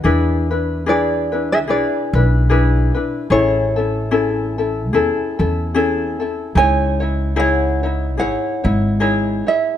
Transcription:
0.04 E2 D4 E4 G#4 B4
0.51 D4 E4 B4
0.86 D4 E4 G#4 B4 D5
1.32 D4 E4 B4
1.52 G#4 E5
1.67 B1 D4 E4 G#4 B4 D5
2.13 B1 D4 E4 B4
2.50 D4 E4 G#4 B4
2.94 D4 E4 B4
3.30 A1 C#4 E4 G#4 A4 C#5
3.76 C#4 E4 A4
4.11 C#4 E4 G#4 A4
4.58 C#4 E4 A4
4.93 E2 C#4 E4 G#4 A4
5.39 E2 C#4 E4 A4
5.74 C#4 E4 G#4 A4
6.20 C#4 E4 A4
6.55 C#2 D#4 E4 G#4 C#5 G#5
7.00 D#4 E4 C#5
7.36 D#4 E4 G#4 C#5 F#5
7.40 C#5
7.83 D#4 E4 C#5
8.17 G#1 D#4 E4 G#4 C#5 F#5
8.64 G#1 D#4 E4 C#5
9.00 D#4 E4 G#4 C#5
9.47 E4 G#4 C#5 E5

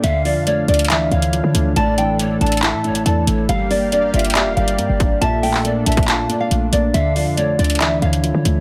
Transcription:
0.04 D2 D3 D4 E5 F5, closed hi-hat
0.25 F3 D5, open hi-hat
0.36 F2
0.47 A3 C#5 D5, closed hi-hat
0.68 D2 D4 D5, closed hi-hat
0.74 closed hi-hat
0.79 closed hi-hat
0.85 closed hi-hat
0.90 E3 E5, clap, closed hi-hat
1.11 D2 D3 C#5 F5, closed hi-hat
1.22 closed hi-hat
1.33 F3, closed hi-hat
1.44 D3
1.55 D2 A3, closed hi-hat
1.76 A1 A2 A4 D5 A5, closed hi-hat
1.98 E3 G5, closed hi-hat
2.19 A3 C#5, closed hi-hat
2.41 A1 D4 D5 A5, closed hi-hat
2.46 closed hi-hat
2.52 closed hi-hat
2.57 closed hi-hat
2.62 E4 E5 A5, clap, closed hi-hat
2.73 A2
2.84 A2 C#5, closed hi-hat
2.90 A1
2.95 A5, closed hi-hat
3.06 E2 E3 D5 A5, closed hi-hat
3.27 A1 A3 C#5, closed hi-hat
3.49 G1 G3 A#3 G4 F5, closed hi-hat
3.71 A#3 D5, open hi-hat
3.92 F1 D4 D5, closed hi-hat
4.03 G1
4.13 G1 F4 D5 E5, closed hi-hat
4.19 closed hi-hat
4.25 closed hi-hat
4.30 closed hi-hat
4.35 G4 E5 F5, clap, closed hi-hat
4.46 F1
4.57 G1 G3 D5 F5, closed hi-hat
4.68 closed hi-hat
4.78 G2 A#3, closed hi-hat
4.89 G1
5.00 D4, kick, closed hi-hat
5.21 A#1 A#2 D4 A4 E5 A5, closed hi-hat
5.43 A3 G5, open hi-hat
5.54 clap
5.65 A#3 D5, closed hi-hat
5.86 A#1 D4 E5 A5, closed hi-hat
5.92 closed hi-hat
5.97 kick, closed hi-hat
6.03 closed hi-hat
6.08 F4 F5 A5, clap, closed hi-hat
6.29 A#2 D5, closed hi-hat
6.40 F5
6.51 A#1 A3, closed hi-hat
6.73 A#1 A#3 D5, closed hi-hat
6.94 D2 D3 E5 F5, closed hi-hat
7.16 F3 D5, open hi-hat
7.27 F2
7.37 A3 C#5 D5, closed hi-hat
7.59 D2 D4 D5, closed hi-hat
7.64 closed hi-hat
7.70 closed hi-hat
7.75 closed hi-hat
7.80 E3 E5, clap, closed hi-hat
8.02 D2 D3 C#5 F5, closed hi-hat
8.13 closed hi-hat
8.24 F3, closed hi-hat
8.34 D3
8.45 D2 A3, closed hi-hat

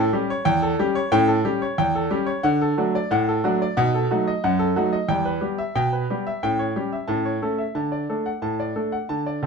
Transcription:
Already playing: A4
0.13 G3 C#4 G4
0.30 C#5
0.45 E2 G5
0.62 A4
0.79 G3 C#4 G4
0.95 C#5
1.12 A2 C#4 G5
1.28 A4
1.45 G3 C#4 G4
1.62 C#5
1.78 E2 G5
1.95 A4
2.11 G3 C#4 G4
2.26 C#5
2.43 D3 F#5
2.61 A4
2.78 F#3 A3 D4 F#4
2.95 D5
3.11 A2 F#5
3.29 A4
3.44 F#3 A3 D4 F#4
3.62 D5
3.77 B2 D#4 F#5
3.94 A4
4.11 F#3 A3 D#4 F#4
4.27 D#5
4.44 F#2 F#5
4.59 A4
4.76 F#3 A3 D#4 F#4
4.93 D#5
5.08 E2 G3 G5
5.25 B4
5.41 G3 B3 G4
5.58 E5
5.75 B2 G5
5.93 B4
6.10 G3 B3 G4
6.27 E5
6.43 A2 C#4 G5
6.59 C#5
6.76 G3 C#4 G4
6.92 E5
7.08 A2 C#4 A5
7.25 C#5
7.42 A3 C#4 A4
7.58 E5
7.75 D3 A5
7.92 D5
8.09 A3 D4 A4
8.26 F#5
8.42 A2 A5
8.60 D5
8.76 A3 D4 A4
8.92 F#5
9.09 D3 A5
9.26 D5
9.42 C#2 C#3 A4

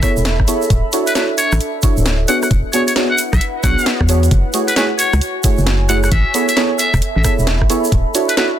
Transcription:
Already playing: A4 E5 B5
0.02 B3 E4 G#4 A4 C#5 E5, kick, cross-stick, open hi-hat, shaker
0.17 E1, shaker
0.25 snare, closed hi-hat, shaker
0.40 A1, kick, cross-stick
0.48 B3 E4 G#4 A4 C#5, open hi-hat, shaker
0.62 shaker
0.70 D1 D4, kick, closed hi-hat, shaker
0.93 D4 E4 F#4 A4 C#5, open hi-hat, shaker
1.07 B4, closed hi-hat, shaker
1.15 D4 E4 F#4 A4 B4 C#5, snare, closed hi-hat, shaker
1.38 C#5, open hi-hat, shaker
1.52 A1, cross-stick, closed hi-hat, shaker
1.60 closed hi-hat, shaker
1.82 D4 E4 F#4 A4 C#5, kick, open hi-hat, shaker
1.97 D1, shaker
2.06 snare, closed hi-hat, shaker
2.28 B3 D4 E4 F#4 G#4 C#5 F#5, open hi-hat, shaker
2.42 B4 F#5, cross-stick, shaker
2.51 E1, kick, closed hi-hat, shaker
2.73 B3 D4 F#4 G#4 C#5, open hi-hat, shaker
2.87 C#5, closed hi-hat, shaker
2.96 B3 D4 F#4 G#4 C#5, snare, closed hi-hat, shaker
3.10 F#5
3.18 open hi-hat, shaker
3.33 B1 E5, kick, cross-stick, closed hi-hat, shaker
3.41 closed hi-hat, shaker
3.63 B1 B3 D4 F#4 G#4 C#5 F#5, kick, cross-stick, open hi-hat, shaker
3.79 shaker
3.86 snare, closed hi-hat, shaker
4.01 E2, kick, cross-stick
4.09 B3 D4 F#4 G#4 C#5, open hi-hat, shaker
4.23 closed hi-hat, shaker
4.31 F#1 F#4, kick, closed hi-hat, shaker
4.53 A3 E4 F#4 G#4 C#5, open hi-hat, shaker
4.68 B4, closed hi-hat, shaker
4.76 A3 E4 F#4 G#4 B4 C#5, snare, closed hi-hat, shaker
4.99 C#5, open hi-hat, shaker
5.10 C#2 G#5, cross-stick, closed hi-hat, shaker
5.21 closed hi-hat, shaker
5.44 A3 E4 F#4 G#4 C#5, kick, open hi-hat, shaker
5.58 F#1, shaker
5.67 snare, closed hi-hat, shaker
5.89 A3 E4 F#4 G#4 C#5 F#5, open hi-hat, shaker
6.03 F#5, cross-stick, shaker
6.11 A1 A4 E5, kick, closed hi-hat
6.29 E5
6.34 B3 E4 G#4 A4 C#5, open hi-hat, shaker
6.49 E5, closed hi-hat, shaker
6.57 B3 E4 G#4 A4 C#5, snare, closed hi-hat, shaker
6.79 E5, open hi-hat, shaker
6.94 E1 B5, kick, cross-stick, closed hi-hat, shaker
7.02 closed hi-hat, shaker
7.16 A1 E5
7.24 B3 E4 G#4 A4 C#5 E5, kick, cross-stick, open hi-hat, shaker
7.39 E1, shaker
7.47 snare, closed hi-hat, shaker
7.61 A1, kick, cross-stick
7.70 B3 E4 G#4 A4 C#5, open hi-hat, shaker
7.84 shaker
7.92 D1 D4, kick, closed hi-hat
8.15 D4 E4 F#4 A4 C#5, open hi-hat, shaker
8.29 B4, closed hi-hat, shaker
8.37 D4 E4 F#4 A4 B4 C#5, snare, closed hi-hat, shaker

